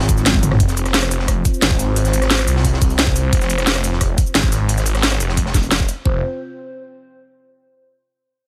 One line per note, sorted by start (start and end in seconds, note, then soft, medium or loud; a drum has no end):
0.00 0.59 G#1 loud
0.00 0.56 C4 medium
0.00 0.56 F4 medium
0.00 0.58 G#4 loud
0.00 snare loud
0.00 closed hi-hat medium
0.09 kick loud
0.09 closed hi-hat medium
0.09 shaker medium
0.17 snare soft
0.17 shaker soft
0.26 snare loud
0.26 closed hi-hat loud
0.26 closed hi-hat medium
0.26 high tom medium
0.34 kick loud
0.34 high tom medium
0.43 closed hi-hat medium
0.43 mid tom medium
0.43 shaker medium
0.52 cross-stick medium
0.52 snare soft
0.52 mid tom medium
0.60 1.44 F1 loud
0.60 6.02 C4 medium
0.60 6.02 F4 medium
0.60 6.02 C5 medium
0.60 kick loud
0.60 closed hi-hat medium
0.60 closed hi-hat loud
0.68 snare soft
0.68 closed hi-hat soft
0.68 shaker soft
0.76 closed hi-hat medium
0.76 shaker medium
0.85 cross-stick soft
0.85 snare soft
0.85 closed hi-hat soft
0.94 snare loud
0.94 closed hi-hat loud
0.94 closed hi-hat medium
1.03 cross-stick medium
1.03 closed hi-hat soft
1.11 closed hi-hat medium
1.11 shaker medium
1.19 snare soft
1.28 kick medium
1.28 cross-stick soft
1.28 closed hi-hat loud
1.28 closed hi-hat medium
1.45 kick loud
1.45 closed hi-hat medium
1.45 shaker medium
1.54 shaker soft
1.62 2.46 G#1 loud
1.62 snare loud
1.62 closed hi-hat medium
1.71 kick loud
1.79 snare soft
1.79 closed hi-hat medium
1.79 shaker medium
1.96 closed hi-hat medium
2.05 snare soft
2.05 closed hi-hat soft
2.05 shaker soft
2.13 closed hi-hat medium
2.13 shaker medium
2.22 cross-stick soft
2.22 snare soft
2.22 closed hi-hat soft
2.30 snare loud
2.30 closed hi-hat loud
2.30 closed hi-hat medium
2.39 cross-stick medium
2.39 snare soft
2.39 closed hi-hat soft
2.47 3.31 C2 medium
2.47 closed hi-hat medium
2.47 shaker medium
2.56 snare medium
2.65 kick medium
2.65 closed hi-hat medium
2.73 snare medium
2.81 kick loud
2.81 closed hi-hat medium
2.81 open hi-hat medium
2.81 shaker medium
2.90 closed hi-hat soft
2.90 shaker soft
2.99 snare loud
2.99 closed hi-hat medium
3.07 kick loud
3.16 closed hi-hat medium
3.16 shaker medium
3.33 4.17 F1 loud
3.33 kick loud
3.33 closed hi-hat medium
3.41 snare soft
3.41 closed hi-hat soft
3.41 shaker soft
3.50 closed hi-hat medium
3.50 shaker medium
3.58 cross-stick soft
3.58 snare soft
3.58 closed hi-hat soft
3.66 snare loud
3.66 closed hi-hat medium
3.66 closed hi-hat loud
3.75 cross-stick medium
3.75 closed hi-hat soft
3.84 closed hi-hat medium
3.84 shaker medium
3.93 snare soft
4.01 kick medium
4.01 cross-stick soft
4.01 closed hi-hat medium
4.18 kick loud
4.18 closed hi-hat medium
4.18 shaker medium
4.26 shaker soft
4.35 5.19 G#1 loud
4.35 snare loud
4.35 closed hi-hat medium
4.44 kick loud
4.52 snare soft
4.52 closed hi-hat medium
4.52 shaker medium
4.69 closed hi-hat medium
4.78 snare soft
4.78 closed hi-hat soft
4.78 shaker soft
4.86 closed hi-hat medium
4.86 shaker medium
4.95 cross-stick soft
4.95 snare soft
4.95 closed hi-hat soft
5.03 snare loud
5.03 closed hi-hat medium
5.12 cross-stick medium
5.12 snare soft
5.12 closed hi-hat soft
5.20 5.70 F1 loud
5.20 closed hi-hat medium
5.20 shaker medium
5.29 snare medium
5.37 kick medium
5.37 closed hi-hat medium
5.46 snare medium
5.54 kick loud
5.54 snare soft
5.54 closed hi-hat medium
5.54 open hi-hat medium
5.54 shaker medium
5.63 closed hi-hat soft
5.63 shaker soft
5.71 5.87 F1 loud
5.71 snare loud
5.71 closed hi-hat loud
5.71 closed hi-hat medium
5.80 kick loud
5.88 closed hi-hat medium
5.88 shaker medium
6.05 6.21 F1 loud
6.05 6.21 C4 medium
6.05 6.21 F4 medium
6.05 6.21 C5 medium
6.05 kick loud